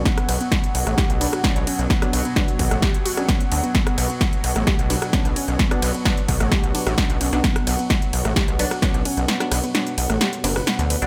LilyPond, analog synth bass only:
\new Staff \with { instrumentName = "Analog synth bass" } { \clef bass \time 4/4 \key b \minor \tempo 4 = 130 r8 b,,16 r8. b,,16 a,,16 r16 b,,8 r8 b,,16 r16 b,,16 | r8 b,,16 r8. b,,16 a,,16 r4. d,16 r16 | r8 b,,16 r8. b,,16 a,,16 r16 b,,8 r8 b,,16 r16 b,,16 | r8 b,,16 r8. b,,16 a,,16 r16 b,,16 r16 a,,16 r16 b,,16 b,,16 b,,16 |
r8 b,,16 r8. b,,16 a,,16 r16 b,,8 r8 b,,16 r16 b,,16 | r8 b,,16 r8. b,,16 a,,16 r8 fis,,8 r16 d,8 b,,16 | }